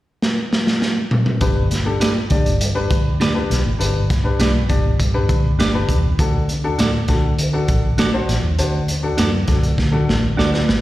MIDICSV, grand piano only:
0, 0, Header, 1, 2, 480
1, 0, Start_track
1, 0, Key_signature, 1, "major"
1, 0, Tempo, 598205
1, 1131, Time_signature, 4, 2, 24, 8
1, 8675, End_track
2, 0, Start_track
2, 0, Title_t, "Grand piano"
2, 0, Program_c, 0, 0
2, 1129, Note_on_c, 0, 62, 73
2, 1133, Note_on_c, 0, 67, 73
2, 1136, Note_on_c, 0, 71, 87
2, 1319, Note_off_c, 0, 62, 0
2, 1321, Note_off_c, 0, 67, 0
2, 1322, Note_off_c, 0, 71, 0
2, 1489, Note_on_c, 0, 62, 73
2, 1493, Note_on_c, 0, 67, 69
2, 1493, Note_on_c, 0, 69, 79
2, 1679, Note_off_c, 0, 62, 0
2, 1680, Note_off_c, 0, 69, 0
2, 1681, Note_off_c, 0, 67, 0
2, 1850, Note_on_c, 0, 62, 68
2, 1852, Note_on_c, 0, 67, 67
2, 1857, Note_on_c, 0, 74, 78
2, 2039, Note_off_c, 0, 62, 0
2, 2040, Note_off_c, 0, 67, 0
2, 2042, Note_off_c, 0, 74, 0
2, 2205, Note_on_c, 0, 62, 79
2, 2208, Note_on_c, 0, 67, 76
2, 2210, Note_on_c, 0, 71, 93
2, 2459, Note_off_c, 0, 62, 0
2, 2460, Note_off_c, 0, 67, 0
2, 2461, Note_off_c, 0, 71, 0
2, 2682, Note_on_c, 0, 62, 82
2, 2686, Note_on_c, 0, 67, 79
2, 2688, Note_on_c, 0, 71, 85
2, 2874, Note_off_c, 0, 62, 0
2, 2876, Note_off_c, 0, 67, 0
2, 2877, Note_off_c, 0, 71, 0
2, 3039, Note_on_c, 0, 62, 73
2, 3044, Note_on_c, 0, 67, 67
2, 3048, Note_on_c, 0, 71, 85
2, 3232, Note_off_c, 0, 62, 0
2, 3235, Note_off_c, 0, 67, 0
2, 3237, Note_off_c, 0, 71, 0
2, 3400, Note_on_c, 0, 62, 75
2, 3406, Note_on_c, 0, 67, 71
2, 3408, Note_on_c, 0, 71, 82
2, 3593, Note_off_c, 0, 62, 0
2, 3596, Note_off_c, 0, 67, 0
2, 3597, Note_off_c, 0, 71, 0
2, 3760, Note_on_c, 0, 62, 69
2, 3762, Note_on_c, 0, 67, 65
2, 3766, Note_on_c, 0, 74, 71
2, 3953, Note_off_c, 0, 62, 0
2, 3954, Note_off_c, 0, 67, 0
2, 3956, Note_off_c, 0, 74, 0
2, 4123, Note_on_c, 0, 62, 80
2, 4125, Note_on_c, 0, 67, 72
2, 4128, Note_on_c, 0, 71, 89
2, 4377, Note_off_c, 0, 62, 0
2, 4378, Note_off_c, 0, 67, 0
2, 4379, Note_off_c, 0, 71, 0
2, 4603, Note_on_c, 0, 62, 84
2, 4607, Note_on_c, 0, 67, 79
2, 4609, Note_on_c, 0, 71, 90
2, 4794, Note_off_c, 0, 62, 0
2, 4796, Note_off_c, 0, 67, 0
2, 4797, Note_off_c, 0, 71, 0
2, 4965, Note_on_c, 0, 62, 73
2, 4968, Note_on_c, 0, 66, 67
2, 4972, Note_on_c, 0, 69, 86
2, 5155, Note_off_c, 0, 62, 0
2, 5157, Note_off_c, 0, 66, 0
2, 5158, Note_off_c, 0, 69, 0
2, 5329, Note_on_c, 0, 62, 82
2, 5329, Note_on_c, 0, 66, 70
2, 5332, Note_on_c, 0, 69, 90
2, 5517, Note_off_c, 0, 62, 0
2, 5517, Note_off_c, 0, 66, 0
2, 5519, Note_off_c, 0, 69, 0
2, 5684, Note_on_c, 0, 62, 72
2, 5689, Note_on_c, 0, 66, 58
2, 5692, Note_on_c, 0, 69, 73
2, 5875, Note_off_c, 0, 62, 0
2, 5877, Note_off_c, 0, 66, 0
2, 5879, Note_off_c, 0, 69, 0
2, 6044, Note_on_c, 0, 62, 77
2, 6045, Note_on_c, 0, 66, 73
2, 6051, Note_on_c, 0, 69, 87
2, 6298, Note_off_c, 0, 62, 0
2, 6299, Note_off_c, 0, 66, 0
2, 6301, Note_off_c, 0, 69, 0
2, 6523, Note_on_c, 0, 62, 85
2, 6528, Note_on_c, 0, 66, 72
2, 6531, Note_on_c, 0, 72, 91
2, 6715, Note_off_c, 0, 62, 0
2, 6717, Note_off_c, 0, 66, 0
2, 6719, Note_off_c, 0, 72, 0
2, 6887, Note_on_c, 0, 62, 75
2, 6891, Note_on_c, 0, 66, 71
2, 6892, Note_on_c, 0, 72, 79
2, 7077, Note_off_c, 0, 62, 0
2, 7079, Note_off_c, 0, 66, 0
2, 7079, Note_off_c, 0, 72, 0
2, 7244, Note_on_c, 0, 62, 76
2, 7248, Note_on_c, 0, 66, 69
2, 7253, Note_on_c, 0, 69, 84
2, 7436, Note_off_c, 0, 62, 0
2, 7438, Note_off_c, 0, 66, 0
2, 7440, Note_off_c, 0, 69, 0
2, 7604, Note_on_c, 0, 62, 66
2, 7608, Note_on_c, 0, 66, 58
2, 7611, Note_on_c, 0, 69, 68
2, 7796, Note_off_c, 0, 62, 0
2, 7798, Note_off_c, 0, 66, 0
2, 7800, Note_off_c, 0, 69, 0
2, 7957, Note_on_c, 0, 62, 75
2, 7961, Note_on_c, 0, 66, 73
2, 7965, Note_on_c, 0, 69, 83
2, 8086, Note_off_c, 0, 66, 0
2, 8088, Note_off_c, 0, 69, 0
2, 8217, Note_off_c, 0, 62, 0
2, 8324, Note_on_c, 0, 78, 56
2, 8330, Note_on_c, 0, 74, 44
2, 8431, Note_off_c, 0, 74, 0
2, 8442, Note_off_c, 0, 78, 0
2, 8444, Note_on_c, 0, 74, 67
2, 8449, Note_on_c, 0, 71, 54
2, 8556, Note_off_c, 0, 71, 0
2, 8562, Note_off_c, 0, 74, 0
2, 8569, Note_on_c, 0, 71, 65
2, 8675, Note_off_c, 0, 71, 0
2, 8675, End_track
0, 0, End_of_file